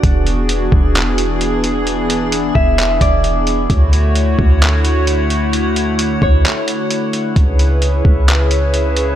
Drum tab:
HH |xxx-xxxx|xxx-xxxx|xxx-xxxx|xxx-xxxx|
CP |----x---|----x---|----x---|----x---|
BD |o--o----|---o-o--|o--o----|---o----|

HH |xxx-xxxx|
CP |----x---|
BD |o--o----|